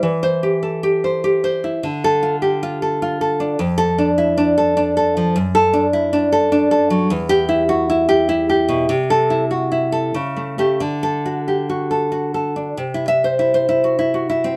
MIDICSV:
0, 0, Header, 1, 2, 480
1, 0, Start_track
1, 0, Tempo, 598205
1, 21, Time_signature, 3, 2, 24, 8
1, 2421, Tempo, 583090
1, 5781, Tempo, 603622
1, 7221, Tempo, 623053
1, 8181, Tempo, 655022
1, 10101, Tempo, 603015
1, 11524, End_track
2, 0, Start_track
2, 0, Title_t, "Nylon-string guitar"
2, 0, Program_c, 0, 24
2, 22, Note_on_c, 0, 52, 80
2, 183, Note_on_c, 0, 72, 93
2, 345, Note_on_c, 0, 67, 68
2, 437, Note_off_c, 0, 72, 0
2, 503, Note_on_c, 0, 69, 66
2, 658, Note_off_c, 0, 67, 0
2, 668, Note_on_c, 0, 67, 75
2, 836, Note_on_c, 0, 72, 68
2, 985, Note_off_c, 0, 67, 0
2, 994, Note_on_c, 0, 67, 74
2, 1145, Note_off_c, 0, 72, 0
2, 1154, Note_on_c, 0, 72, 74
2, 1231, Note_off_c, 0, 69, 0
2, 1315, Note_on_c, 0, 64, 68
2, 1438, Note_off_c, 0, 52, 0
2, 1471, Note_on_c, 0, 50, 81
2, 1472, Note_off_c, 0, 72, 0
2, 1473, Note_off_c, 0, 64, 0
2, 1473, Note_off_c, 0, 67, 0
2, 1640, Note_on_c, 0, 69, 101
2, 1786, Note_on_c, 0, 65, 73
2, 1888, Note_off_c, 0, 69, 0
2, 1941, Note_on_c, 0, 67, 72
2, 2099, Note_off_c, 0, 65, 0
2, 2108, Note_on_c, 0, 65, 88
2, 2261, Note_off_c, 0, 67, 0
2, 2264, Note_on_c, 0, 69, 77
2, 2415, Note_off_c, 0, 65, 0
2, 2424, Note_on_c, 0, 65, 85
2, 2570, Note_off_c, 0, 69, 0
2, 2580, Note_on_c, 0, 69, 75
2, 2736, Note_on_c, 0, 62, 76
2, 2863, Note_off_c, 0, 50, 0
2, 2893, Note_on_c, 0, 41, 94
2, 2894, Note_off_c, 0, 62, 0
2, 2895, Note_off_c, 0, 69, 0
2, 2897, Note_off_c, 0, 65, 0
2, 3046, Note_on_c, 0, 69, 112
2, 3217, Note_on_c, 0, 62, 82
2, 3305, Note_off_c, 0, 69, 0
2, 3377, Note_on_c, 0, 64, 78
2, 3529, Note_off_c, 0, 62, 0
2, 3539, Note_on_c, 0, 62, 90
2, 3701, Note_off_c, 0, 64, 0
2, 3704, Note_on_c, 0, 69, 86
2, 3852, Note_off_c, 0, 62, 0
2, 3862, Note_on_c, 0, 62, 94
2, 4017, Note_off_c, 0, 69, 0
2, 4027, Note_on_c, 0, 69, 81
2, 4191, Note_on_c, 0, 53, 81
2, 4312, Note_off_c, 0, 41, 0
2, 4345, Note_off_c, 0, 62, 0
2, 4346, Note_off_c, 0, 69, 0
2, 4347, Note_on_c, 0, 42, 93
2, 4348, Note_off_c, 0, 53, 0
2, 4504, Note_on_c, 0, 69, 111
2, 4658, Note_on_c, 0, 62, 87
2, 4758, Note_off_c, 0, 69, 0
2, 4821, Note_on_c, 0, 64, 81
2, 4973, Note_off_c, 0, 62, 0
2, 4982, Note_on_c, 0, 62, 96
2, 5141, Note_off_c, 0, 64, 0
2, 5144, Note_on_c, 0, 69, 93
2, 5294, Note_off_c, 0, 62, 0
2, 5304, Note_on_c, 0, 62, 102
2, 5453, Note_off_c, 0, 69, 0
2, 5462, Note_on_c, 0, 69, 86
2, 5621, Note_on_c, 0, 54, 82
2, 5748, Note_off_c, 0, 42, 0
2, 5781, Note_off_c, 0, 54, 0
2, 5781, Note_off_c, 0, 69, 0
2, 5782, Note_off_c, 0, 62, 0
2, 5785, Note_on_c, 0, 40, 108
2, 5935, Note_on_c, 0, 67, 120
2, 6089, Note_on_c, 0, 64, 89
2, 6194, Note_off_c, 0, 67, 0
2, 6250, Note_on_c, 0, 66, 82
2, 6405, Note_off_c, 0, 64, 0
2, 6415, Note_on_c, 0, 64, 91
2, 6563, Note_off_c, 0, 66, 0
2, 6566, Note_on_c, 0, 67, 94
2, 6716, Note_off_c, 0, 64, 0
2, 6726, Note_on_c, 0, 64, 90
2, 6881, Note_off_c, 0, 67, 0
2, 6891, Note_on_c, 0, 67, 83
2, 7042, Note_on_c, 0, 47, 85
2, 7190, Note_off_c, 0, 40, 0
2, 7201, Note_off_c, 0, 47, 0
2, 7204, Note_on_c, 0, 48, 98
2, 7212, Note_off_c, 0, 64, 0
2, 7215, Note_off_c, 0, 67, 0
2, 7370, Note_on_c, 0, 69, 105
2, 7523, Note_on_c, 0, 64, 84
2, 7628, Note_off_c, 0, 69, 0
2, 7681, Note_on_c, 0, 66, 70
2, 7833, Note_off_c, 0, 64, 0
2, 7842, Note_on_c, 0, 64, 81
2, 7999, Note_off_c, 0, 66, 0
2, 8002, Note_on_c, 0, 69, 80
2, 8143, Note_off_c, 0, 48, 0
2, 8172, Note_off_c, 0, 69, 0
2, 8172, Note_on_c, 0, 49, 91
2, 8173, Note_off_c, 0, 64, 0
2, 8334, Note_on_c, 0, 57, 65
2, 8484, Note_off_c, 0, 57, 0
2, 8493, Note_on_c, 0, 57, 66
2, 8499, Note_on_c, 0, 67, 89
2, 8643, Note_off_c, 0, 57, 0
2, 8644, Note_off_c, 0, 49, 0
2, 8646, Note_off_c, 0, 67, 0
2, 8656, Note_on_c, 0, 50, 83
2, 8821, Note_on_c, 0, 69, 91
2, 8987, Note_on_c, 0, 66, 67
2, 9082, Note_off_c, 0, 69, 0
2, 9149, Note_on_c, 0, 67, 62
2, 9300, Note_off_c, 0, 66, 0
2, 9309, Note_on_c, 0, 66, 72
2, 9461, Note_off_c, 0, 67, 0
2, 9464, Note_on_c, 0, 69, 67
2, 9609, Note_off_c, 0, 66, 0
2, 9618, Note_on_c, 0, 66, 68
2, 9774, Note_off_c, 0, 69, 0
2, 9783, Note_on_c, 0, 69, 63
2, 9942, Note_on_c, 0, 62, 59
2, 10067, Note_off_c, 0, 50, 0
2, 10097, Note_off_c, 0, 66, 0
2, 10099, Note_off_c, 0, 62, 0
2, 10100, Note_off_c, 0, 69, 0
2, 10100, Note_on_c, 0, 48, 82
2, 10233, Note_on_c, 0, 64, 74
2, 10339, Note_off_c, 0, 64, 0
2, 10342, Note_on_c, 0, 76, 101
2, 10472, Note_on_c, 0, 72, 72
2, 10539, Note_off_c, 0, 76, 0
2, 10590, Note_on_c, 0, 64, 76
2, 10701, Note_off_c, 0, 72, 0
2, 10710, Note_on_c, 0, 72, 78
2, 10817, Note_off_c, 0, 64, 0
2, 10826, Note_on_c, 0, 64, 74
2, 10947, Note_on_c, 0, 66, 59
2, 11055, Note_off_c, 0, 64, 0
2, 11065, Note_on_c, 0, 64, 76
2, 11178, Note_off_c, 0, 66, 0
2, 11188, Note_on_c, 0, 66, 62
2, 11301, Note_off_c, 0, 64, 0
2, 11311, Note_on_c, 0, 64, 72
2, 11423, Note_off_c, 0, 72, 0
2, 11427, Note_on_c, 0, 60, 72
2, 11508, Note_off_c, 0, 48, 0
2, 11524, Note_off_c, 0, 60, 0
2, 11524, Note_off_c, 0, 64, 0
2, 11524, Note_off_c, 0, 66, 0
2, 11524, End_track
0, 0, End_of_file